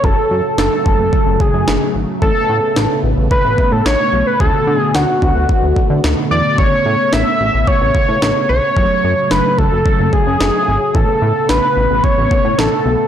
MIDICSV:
0, 0, Header, 1, 5, 480
1, 0, Start_track
1, 0, Key_signature, 3, "major"
1, 0, Tempo, 545455
1, 33, Time_signature, 4, 2, 24, 8
1, 11508, End_track
2, 0, Start_track
2, 0, Title_t, "Analog synth lead"
2, 0, Program_c, 0, 81
2, 36, Note_on_c, 0, 69, 102
2, 509, Note_off_c, 0, 69, 0
2, 514, Note_on_c, 0, 69, 94
2, 1238, Note_on_c, 0, 68, 80
2, 1251, Note_off_c, 0, 69, 0
2, 1716, Note_off_c, 0, 68, 0
2, 1952, Note_on_c, 0, 69, 117
2, 2638, Note_off_c, 0, 69, 0
2, 2914, Note_on_c, 0, 71, 99
2, 3273, Note_on_c, 0, 69, 92
2, 3286, Note_off_c, 0, 71, 0
2, 3389, Note_off_c, 0, 69, 0
2, 3394, Note_on_c, 0, 73, 109
2, 3753, Note_on_c, 0, 71, 95
2, 3766, Note_off_c, 0, 73, 0
2, 3868, Note_off_c, 0, 71, 0
2, 3873, Note_on_c, 0, 69, 104
2, 4198, Note_off_c, 0, 69, 0
2, 4198, Note_on_c, 0, 68, 104
2, 4352, Note_on_c, 0, 66, 88
2, 4365, Note_off_c, 0, 68, 0
2, 5313, Note_off_c, 0, 66, 0
2, 5552, Note_on_c, 0, 74, 100
2, 5776, Note_off_c, 0, 74, 0
2, 5792, Note_on_c, 0, 73, 108
2, 6271, Note_on_c, 0, 76, 109
2, 6284, Note_off_c, 0, 73, 0
2, 6751, Note_on_c, 0, 73, 107
2, 6764, Note_off_c, 0, 76, 0
2, 7467, Note_off_c, 0, 73, 0
2, 7472, Note_on_c, 0, 73, 110
2, 8191, Note_on_c, 0, 71, 95
2, 8204, Note_off_c, 0, 73, 0
2, 8430, Note_on_c, 0, 69, 100
2, 8444, Note_off_c, 0, 71, 0
2, 8910, Note_on_c, 0, 68, 99
2, 8923, Note_off_c, 0, 69, 0
2, 9629, Note_on_c, 0, 69, 97
2, 9642, Note_off_c, 0, 68, 0
2, 10111, Note_on_c, 0, 71, 99
2, 10124, Note_off_c, 0, 69, 0
2, 10590, Note_on_c, 0, 73, 100
2, 10603, Note_off_c, 0, 71, 0
2, 11072, Note_on_c, 0, 69, 92
2, 11085, Note_off_c, 0, 73, 0
2, 11508, Note_off_c, 0, 69, 0
2, 11508, End_track
3, 0, Start_track
3, 0, Title_t, "String machine"
3, 0, Program_c, 1, 50
3, 0, Note_on_c, 1, 57, 68
3, 35, Note_on_c, 1, 49, 73
3, 36, Note_on_c, 1, 54, 66
3, 1936, Note_off_c, 1, 54, 0
3, 1954, Note_on_c, 1, 59, 85
3, 3839, Note_off_c, 1, 49, 0
3, 3855, Note_off_c, 1, 59, 0
3, 3872, Note_on_c, 1, 66, 81
3, 3873, Note_on_c, 1, 50, 75
3, 3873, Note_on_c, 1, 59, 66
3, 5774, Note_off_c, 1, 50, 0
3, 5774, Note_off_c, 1, 59, 0
3, 5774, Note_off_c, 1, 66, 0
3, 5793, Note_on_c, 1, 49, 72
3, 5793, Note_on_c, 1, 59, 82
3, 7694, Note_off_c, 1, 59, 0
3, 7709, Note_on_c, 1, 54, 68
3, 9599, Note_off_c, 1, 57, 0
3, 9612, Note_off_c, 1, 54, 0
3, 9635, Note_on_c, 1, 57, 67
3, 9636, Note_on_c, 1, 59, 83
3, 11508, Note_off_c, 1, 49, 0
3, 11508, Note_off_c, 1, 57, 0
3, 11508, Note_off_c, 1, 59, 0
3, 11508, End_track
4, 0, Start_track
4, 0, Title_t, "Analog synth bass"
4, 0, Program_c, 2, 38
4, 33, Note_on_c, 2, 30, 101
4, 126, Note_off_c, 2, 30, 0
4, 273, Note_on_c, 2, 42, 105
4, 366, Note_off_c, 2, 42, 0
4, 512, Note_on_c, 2, 30, 98
4, 605, Note_off_c, 2, 30, 0
4, 755, Note_on_c, 2, 30, 100
4, 847, Note_off_c, 2, 30, 0
4, 872, Note_on_c, 2, 30, 100
4, 966, Note_off_c, 2, 30, 0
4, 1114, Note_on_c, 2, 30, 94
4, 1207, Note_off_c, 2, 30, 0
4, 1352, Note_on_c, 2, 42, 91
4, 1446, Note_off_c, 2, 42, 0
4, 1476, Note_on_c, 2, 30, 93
4, 1568, Note_off_c, 2, 30, 0
4, 1714, Note_on_c, 2, 32, 95
4, 1807, Note_off_c, 2, 32, 0
4, 1954, Note_on_c, 2, 33, 104
4, 2046, Note_off_c, 2, 33, 0
4, 2194, Note_on_c, 2, 45, 104
4, 2286, Note_off_c, 2, 45, 0
4, 2436, Note_on_c, 2, 33, 91
4, 2528, Note_off_c, 2, 33, 0
4, 2672, Note_on_c, 2, 33, 97
4, 2765, Note_off_c, 2, 33, 0
4, 2794, Note_on_c, 2, 33, 97
4, 2887, Note_off_c, 2, 33, 0
4, 3034, Note_on_c, 2, 33, 99
4, 3127, Note_off_c, 2, 33, 0
4, 3273, Note_on_c, 2, 45, 89
4, 3366, Note_off_c, 2, 45, 0
4, 3392, Note_on_c, 2, 33, 91
4, 3486, Note_off_c, 2, 33, 0
4, 3632, Note_on_c, 2, 35, 84
4, 3725, Note_off_c, 2, 35, 0
4, 3873, Note_on_c, 2, 38, 100
4, 3966, Note_off_c, 2, 38, 0
4, 4112, Note_on_c, 2, 50, 107
4, 4205, Note_off_c, 2, 50, 0
4, 4353, Note_on_c, 2, 38, 99
4, 4446, Note_off_c, 2, 38, 0
4, 4595, Note_on_c, 2, 38, 91
4, 4687, Note_off_c, 2, 38, 0
4, 4713, Note_on_c, 2, 38, 94
4, 4806, Note_off_c, 2, 38, 0
4, 4951, Note_on_c, 2, 38, 89
4, 5045, Note_off_c, 2, 38, 0
4, 5193, Note_on_c, 2, 50, 88
4, 5286, Note_off_c, 2, 50, 0
4, 5314, Note_on_c, 2, 38, 95
4, 5407, Note_off_c, 2, 38, 0
4, 5554, Note_on_c, 2, 40, 94
4, 5647, Note_off_c, 2, 40, 0
4, 5794, Note_on_c, 2, 33, 99
4, 5886, Note_off_c, 2, 33, 0
4, 6035, Note_on_c, 2, 45, 104
4, 6127, Note_off_c, 2, 45, 0
4, 6275, Note_on_c, 2, 33, 96
4, 6367, Note_off_c, 2, 33, 0
4, 6515, Note_on_c, 2, 33, 94
4, 6607, Note_off_c, 2, 33, 0
4, 6637, Note_on_c, 2, 33, 96
4, 6729, Note_off_c, 2, 33, 0
4, 6875, Note_on_c, 2, 33, 96
4, 6967, Note_off_c, 2, 33, 0
4, 7115, Note_on_c, 2, 45, 85
4, 7207, Note_off_c, 2, 45, 0
4, 7235, Note_on_c, 2, 33, 89
4, 7327, Note_off_c, 2, 33, 0
4, 7475, Note_on_c, 2, 35, 92
4, 7567, Note_off_c, 2, 35, 0
4, 7714, Note_on_c, 2, 30, 100
4, 7806, Note_off_c, 2, 30, 0
4, 7956, Note_on_c, 2, 42, 107
4, 8048, Note_off_c, 2, 42, 0
4, 8195, Note_on_c, 2, 30, 97
4, 8287, Note_off_c, 2, 30, 0
4, 8436, Note_on_c, 2, 30, 98
4, 8528, Note_off_c, 2, 30, 0
4, 8554, Note_on_c, 2, 30, 95
4, 8647, Note_off_c, 2, 30, 0
4, 8794, Note_on_c, 2, 30, 95
4, 8887, Note_off_c, 2, 30, 0
4, 9035, Note_on_c, 2, 42, 89
4, 9127, Note_off_c, 2, 42, 0
4, 9157, Note_on_c, 2, 30, 93
4, 9249, Note_off_c, 2, 30, 0
4, 9397, Note_on_c, 2, 32, 95
4, 9488, Note_off_c, 2, 32, 0
4, 9634, Note_on_c, 2, 33, 104
4, 9727, Note_off_c, 2, 33, 0
4, 9875, Note_on_c, 2, 45, 104
4, 9967, Note_off_c, 2, 45, 0
4, 10115, Note_on_c, 2, 33, 93
4, 10207, Note_off_c, 2, 33, 0
4, 10356, Note_on_c, 2, 33, 93
4, 10448, Note_off_c, 2, 33, 0
4, 10476, Note_on_c, 2, 33, 94
4, 10568, Note_off_c, 2, 33, 0
4, 10715, Note_on_c, 2, 33, 95
4, 10807, Note_off_c, 2, 33, 0
4, 10954, Note_on_c, 2, 45, 90
4, 11047, Note_off_c, 2, 45, 0
4, 11075, Note_on_c, 2, 33, 90
4, 11167, Note_off_c, 2, 33, 0
4, 11314, Note_on_c, 2, 35, 89
4, 11407, Note_off_c, 2, 35, 0
4, 11508, End_track
5, 0, Start_track
5, 0, Title_t, "Drums"
5, 34, Note_on_c, 9, 36, 106
5, 122, Note_off_c, 9, 36, 0
5, 513, Note_on_c, 9, 38, 101
5, 601, Note_off_c, 9, 38, 0
5, 755, Note_on_c, 9, 36, 86
5, 843, Note_off_c, 9, 36, 0
5, 993, Note_on_c, 9, 36, 93
5, 1081, Note_off_c, 9, 36, 0
5, 1233, Note_on_c, 9, 36, 86
5, 1321, Note_off_c, 9, 36, 0
5, 1476, Note_on_c, 9, 38, 100
5, 1564, Note_off_c, 9, 38, 0
5, 1953, Note_on_c, 9, 36, 108
5, 2041, Note_off_c, 9, 36, 0
5, 2433, Note_on_c, 9, 38, 99
5, 2521, Note_off_c, 9, 38, 0
5, 2912, Note_on_c, 9, 36, 90
5, 3000, Note_off_c, 9, 36, 0
5, 3152, Note_on_c, 9, 36, 87
5, 3240, Note_off_c, 9, 36, 0
5, 3396, Note_on_c, 9, 38, 97
5, 3484, Note_off_c, 9, 38, 0
5, 3873, Note_on_c, 9, 36, 108
5, 3961, Note_off_c, 9, 36, 0
5, 4353, Note_on_c, 9, 38, 102
5, 4441, Note_off_c, 9, 38, 0
5, 4595, Note_on_c, 9, 36, 88
5, 4683, Note_off_c, 9, 36, 0
5, 4833, Note_on_c, 9, 36, 91
5, 4921, Note_off_c, 9, 36, 0
5, 5073, Note_on_c, 9, 36, 88
5, 5161, Note_off_c, 9, 36, 0
5, 5315, Note_on_c, 9, 38, 98
5, 5403, Note_off_c, 9, 38, 0
5, 5793, Note_on_c, 9, 36, 105
5, 5881, Note_off_c, 9, 36, 0
5, 6272, Note_on_c, 9, 38, 100
5, 6360, Note_off_c, 9, 38, 0
5, 6753, Note_on_c, 9, 36, 92
5, 6841, Note_off_c, 9, 36, 0
5, 6993, Note_on_c, 9, 36, 85
5, 7081, Note_off_c, 9, 36, 0
5, 7236, Note_on_c, 9, 38, 101
5, 7324, Note_off_c, 9, 38, 0
5, 7714, Note_on_c, 9, 36, 108
5, 7802, Note_off_c, 9, 36, 0
5, 8193, Note_on_c, 9, 38, 102
5, 8281, Note_off_c, 9, 38, 0
5, 8435, Note_on_c, 9, 36, 84
5, 8523, Note_off_c, 9, 36, 0
5, 8674, Note_on_c, 9, 36, 95
5, 8762, Note_off_c, 9, 36, 0
5, 8913, Note_on_c, 9, 36, 87
5, 9001, Note_off_c, 9, 36, 0
5, 9157, Note_on_c, 9, 38, 102
5, 9245, Note_off_c, 9, 38, 0
5, 9634, Note_on_c, 9, 36, 109
5, 9722, Note_off_c, 9, 36, 0
5, 10113, Note_on_c, 9, 38, 104
5, 10201, Note_off_c, 9, 38, 0
5, 10594, Note_on_c, 9, 36, 93
5, 10682, Note_off_c, 9, 36, 0
5, 10833, Note_on_c, 9, 36, 90
5, 10921, Note_off_c, 9, 36, 0
5, 11077, Note_on_c, 9, 38, 101
5, 11165, Note_off_c, 9, 38, 0
5, 11508, End_track
0, 0, End_of_file